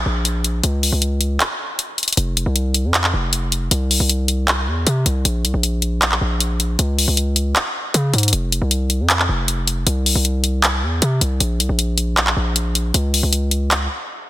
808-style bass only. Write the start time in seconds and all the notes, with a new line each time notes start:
0.06 A#1
0.64 C#2
0.92 C#2
2.17 F1
2.46 C2
2.85 F2
3.13 F1
3.71 C2
4.00 C2
4.67 E2
4.87 C3
5.06 C2
5.25 A#1
5.44 C2
5.54 A#1
6.21 A#1
6.79 C#2
7.08 C#2
7.94 C#3
8.13 G#2
8.33 F1
8.62 C2
9.00 F2
9.29 F1
9.87 C2
10.15 C2
10.83 E2
11.02 C3
11.21 C2
11.40 A#1
11.60 C2
11.69 A#1
12.37 A#1
12.94 C#2
13.23 C#2